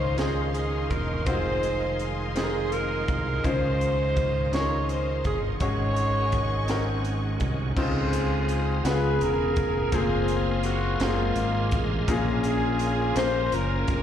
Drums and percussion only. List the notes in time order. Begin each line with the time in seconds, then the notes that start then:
0.18 snare, closed hi-hat
0.55 closed hi-hat
0.90 kick, closed hi-hat
1.26 kick, closed hi-hat
1.63 closed hi-hat
1.99 closed hi-hat
2.36 snare, closed hi-hat
2.72 closed hi-hat
3.08 kick, closed hi-hat
3.44 kick, closed hi-hat
3.81 closed hi-hat
4.16 kick, closed hi-hat
4.53 snare, closed hi-hat
4.89 closed hi-hat
5.24 kick, closed hi-hat
5.60 kick, closed hi-hat
5.96 closed hi-hat
6.32 kick, closed hi-hat
6.68 snare, closed hi-hat
7.05 closed hi-hat
7.40 kick, closed hi-hat
7.77 kick, crash
8.13 closed hi-hat
8.49 closed hi-hat
8.85 snare, closed hi-hat
9.21 closed hi-hat
9.56 kick, closed hi-hat
9.92 kick, closed hi-hat
10.28 closed hi-hat
10.63 closed hi-hat
11.00 snare, closed hi-hat
11.36 closed hi-hat
11.71 kick, closed hi-hat
12.08 kick, closed hi-hat
12.44 closed hi-hat
12.79 closed hi-hat
13.16 snare, closed hi-hat
13.52 closed hi-hat
13.88 kick, closed hi-hat